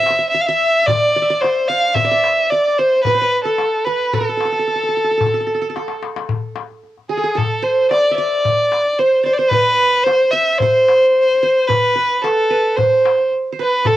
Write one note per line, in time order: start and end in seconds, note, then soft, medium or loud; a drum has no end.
0.00 0.33 C5 medium
0.00 0.29 E5 loud
0.00 0.10 E5 medium
0.06 darbuka tek medium
0.10 0.18 E5 medium
0.19 0.34 E5 medium
0.30 0.42 E5 medium
0.34 0.48 E5 medium
0.34 darbuka ka soft
0.41 0.48 F5 medium
0.47 0.88 E5 loud
0.47 1.21 E5 medium
0.61 darbuka ka soft
0.86 1.42 D5 loud
0.86 1.16 D5 medium
0.86 darbuka dum medium
1.16 1.30 D5 medium
1.22 1.76 E5 medium
1.28 2.04 D5 medium
1.28 darbuka ka soft
1.41 1.70 C5 medium
1.41 2.50 C5 medium
1.41 darbuka tek medium
1.56 darbuka ka soft
1.68 1.96 F5 medium
1.68 2.02 F5 medium
1.68 darbuka ka soft
1.82 darbuka ka soft
1.95 2.51 E5 medium
1.95 2.11 E5 medium
1.95 darbuka dum medium
2.05 2.51 D5 medium
2.12 3.03 E5 medium
2.24 darbuka tek medium
2.50 2.80 D5 medium
2.50 3.50 D5 medium
2.50 darbuka ka soft
2.78 3.03 C5 medium
2.78 3.13 C5 medium
2.78 darbuka ka soft
3.04 3.42 B4 medium
3.04 3.21 B4 medium
3.04 darbuka dum medium
3.15 3.27 C5 medium
3.21 3.86 B4 medium
3.44 3.86 A4 medium
3.44 4.13 A4 medium
3.44 darbuka ka soft
3.58 darbuka tek medium
3.73 darbuka ka soft
3.84 4.15 B4 medium
3.84 4.96 B4 medium
3.84 darbuka ka soft
3.99 darbuka ka soft
4.13 6.02 A4 medium
4.13 4.20 A4 medium
4.13 darbuka dum medium
4.21 4.29 A4 medium
4.29 4.37 A4 soft
4.37 4.45 A4 soft
4.37 darbuka tek medium
4.45 4.52 A4 soft
4.52 4.59 A4 soft
4.52 darbuka ka soft
4.59 4.67 A4 soft
4.67 4.75 A4 soft
4.75 4.83 A4 soft
4.80 4.88 A4 soft
4.80 darbuka ka soft
4.89 4.96 A4 soft
4.93 5.04 A4 soft
4.93 darbuka ka soft
5.04 5.11 A4 soft
5.11 5.17 A4 soft
5.17 5.26 A4 soft
5.17 darbuka dum medium
5.26 5.33 A4 soft
5.34 5.40 A4 soft
5.41 5.46 A4 soft
5.47 5.54 A4 soft
5.47 darbuka ka soft
5.55 5.61 A4 soft
5.62 5.69 A4 medium
5.62 darbuka ka soft
5.70 5.76 A4 soft
5.76 6.94 A4 soft
5.76 darbuka tek medium
5.88 darbuka ka medium
6.03 darbuka tek medium
6.16 darbuka ka medium
6.29 darbuka dum medium
6.43 darbuka ka soft
6.56 darbuka tek medium
6.70 darbuka ka soft
6.83 darbuka ka soft
6.98 darbuka ka soft
7.09 7.23 G#4 medium
7.09 7.39 G#4 medium
7.09 darbuka ka soft
7.17 7.30 A4 soft
7.24 7.41 G#4 medium
7.35 8.52 A4 medium
7.35 7.65 A4 medium
7.35 darbuka dum medium
7.63 8.68 C5 medium
7.63 7.90 C5 medium
7.79 darbuka ka soft
7.91 8.16 D5 medium
7.91 8.18 D5 medium
7.91 darbuka tek medium
8.06 darbuka ka soft
8.11 9.03 E5 medium
8.17 9.01 D5 medium
8.17 9.17 D5 medium
8.17 darbuka ka soft
8.45 darbuka dum medium
8.59 darbuka ka soft
8.72 darbuka tek medium
8.84 darbuka ka soft
8.98 9.26 C5 medium
8.98 9.24 C5 medium
8.98 darbuka ka soft
9.11 darbuka ka soft
9.23 9.35 C5 medium
9.23 9.38 C5 medium
9.23 10.22 D5 medium
9.23 darbuka ka soft
9.33 9.39 D5 medium
9.37 9.51 C5 medium
9.37 9.58 C5 medium
9.50 10.05 B4 loud
9.50 10.12 B4 medium
9.50 darbuka dum medium
9.80 darbuka ka soft
9.94 darbuka ka soft
10.03 10.32 C5 loud
10.03 10.62 C5 medium
10.07 darbuka tek medium
10.20 darbuka ka soft
10.31 10.60 E5 medium
10.31 11.25 E5 medium
10.31 darbuka ka soft
10.59 11.68 C5 loud
10.59 11.42 C5 medium
10.59 darbuka dum medium
10.88 darbuka tek medium
11.03 darbuka ka soft
11.16 darbuka ka soft
11.29 darbuka ka soft
11.43 11.74 C5 medium
11.43 darbuka ka soft
11.67 12.23 B4 loud
11.67 11.95 B4 medium
11.67 darbuka dum medium
11.95 12.50 B4 medium
11.95 darbuka ka soft
12.10 darbuka ka soft
12.22 12.78 A4 medium
12.22 13.41 A4 medium
12.22 darbuka tek medium
12.38 darbuka ka soft
12.50 12.83 B4 medium
12.50 darbuka ka soft
12.76 13.30 C5 medium
12.76 13.52 C5 medium
12.76 darbuka dum medium
12.93 darbuka ka soft
13.05 darbuka tek medium
13.19 darbuka ka soft
13.32 darbuka ka soft
13.53 13.65 C5 soft
13.59 13.97 B4 medium
13.59 13.89 B4 medium
13.59 darbuka ka soft
13.85 13.97 A4 medium
13.85 darbuka dum medium